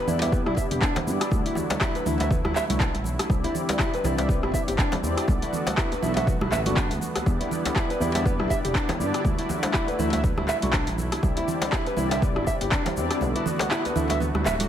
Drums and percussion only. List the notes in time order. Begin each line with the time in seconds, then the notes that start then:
0.07 djembe tone, low conga, shaker
0.21 closed hi-hat, djembe slap, high conga, shaker
0.32 kick, djembe tone, shaker
0.46 cross-stick
0.57 kick, shaker
0.71 closed hi-hat, djembe tone, shaker
0.82 kick, clap, shaker
0.96 closed hi-hat, djembe slap, djembe tone, high conga, low conga
1.08 shaker
1.21 cross-stick, closed hi-hat, shaker
1.31 kick, djembe tone, high conga, shaker
1.46 closed hi-hat
1.55 djembe tone, low conga, shaker
1.70 closed hi-hat, djembe slap, high conga, shaker
1.81 kick, cross-stick, clap, shaker
1.95 closed hi-hat, djembe tone, shaker
2.06 low conga, shaker
2.20 closed hi-hat, djembe slap, high conga, djembe tone, shaker
2.31 kick, low conga, shaker
2.45 cross-stick, high conga
2.55 clap, djembe tone, shaker
2.70 closed hi-hat, high conga, shaker
2.80 kick, clap, djembe tone, shaker
2.95 closed hi-hat, high conga
3.04 low conga, shaker
3.19 cross-stick, closed hi-hat, djembe tone, shaker
3.30 kick, high conga, shaker
3.44 closed hi-hat, djembe tone
3.55 low conga, shaker
3.69 closed hi-hat, djembe slap, high conga, shaker
3.79 kick, cross-stick, clap, djembe tone, shaker
3.94 closed hi-hat, shaker
4.04 djembe tone, low conga, shaker
4.18 closed hi-hat, djembe slap, high conga, shaker
4.29 kick, shaker
4.43 cross-stick, djembe tone
4.54 kick, shaker
4.68 closed hi-hat, djembe tone, shaker
4.78 kick, clap, shaker
4.92 closed hi-hat, djembe slap, high conga, low conga
5.04 djembe tone, shaker
5.17 cross-stick, closed hi-hat, shaker
5.28 kick, djembe tone, high conga, shaker
5.42 closed hi-hat, shaker
5.53 low conga, shaker
5.67 closed hi-hat, djembe slap, djembe tone, high conga, shaker
5.78 kick, cross-stick, clap, shaker
5.92 closed hi-hat, djembe tone, shaker
6.03 low conga, shaker
6.17 closed hi-hat, djembe slap, high conga, shaker
6.27 kick, djembe tone, low conga, shaker
6.41 cross-stick, high conga
6.52 clap, djembe tone, shaker
6.66 closed hi-hat, high conga, shaker
6.77 kick, clap, shaker
6.91 closed hi-hat, djembe tone, high conga, shaker
7.01 low conga, shaker
7.16 cross-stick, closed hi-hat, djembe tone, shaker
7.26 kick, high conga, shaker
7.41 closed hi-hat, djembe tone
7.51 low conga, shaker
7.65 closed hi-hat, djembe slap, djembe tone, high conga, shaker
7.76 kick, cross-stick, clap, shaker
7.90 closed hi-hat, shaker
8.01 djembe tone, low conga, shaker
8.15 closed hi-hat, djembe slap, high conga, shaker
8.26 kick, djembe tone, shaker
8.40 cross-stick
8.50 kick, shaker
8.65 closed hi-hat, djembe tone, shaker
8.75 kick, clap, shaker
8.89 closed hi-hat, djembe slap, djembe tone, high conga, low conga
9.01 shaker
9.14 cross-stick, closed hi-hat, shaker
9.25 kick, djembe tone, high conga, shaker
9.38 closed hi-hat
9.49 djembe tone, low conga, shaker
9.63 closed hi-hat, djembe slap, high conga, shaker
9.74 kick, cross-stick, clap, shaker
9.88 closed hi-hat, djembe tone, shaker
9.99 low conga, shaker
10.13 closed hi-hat, djembe slap, djembe tone, high conga, shaker
10.24 kick, low conga, shaker
10.38 cross-stick, high conga
10.48 clap, djembe tone, shaker
10.62 closed hi-hat, high conga, shaker
10.73 kick, clap, djembe tone, shaker
10.87 closed hi-hat, high conga
10.98 low conga, shaker
11.12 cross-stick, closed hi-hat, djembe tone, shaker
11.23 kick, high conga, shaker
11.37 closed hi-hat, djembe tone
11.48 low conga, shaker
11.62 closed hi-hat, djembe slap, high conga, shaker
11.72 kick, cross-stick, clap, djembe tone, shaker
11.86 closed hi-hat, shaker
11.97 djembe tone, low conga, shaker
12.11 closed hi-hat, djembe slap, high conga, shaker
12.22 kick, shaker
12.36 cross-stick, djembe tone
12.47 kick, shaker
12.61 closed hi-hat, djembe tone, shaker
12.72 kick, clap, shaker
12.86 closed hi-hat, djembe slap, high conga, low conga
12.97 djembe tone, shaker
13.11 cross-stick, closed hi-hat, shaker
13.21 high conga, djembe tone, shaker
13.36 closed hi-hat
13.46 low conga, shaker
13.59 closed hi-hat, djembe slap, high conga, djembe tone, shaker
13.71 cross-stick, clap, shaker
13.85 closed hi-hat, djembe tone, shaker
13.96 low conga, shaker
14.10 closed hi-hat, djembe slap, high conga, shaker
14.20 djembe tone, low conga, shaker
14.35 cross-stick, high conga
14.45 clap, djembe tone, shaker
14.60 closed hi-hat, high conga, shaker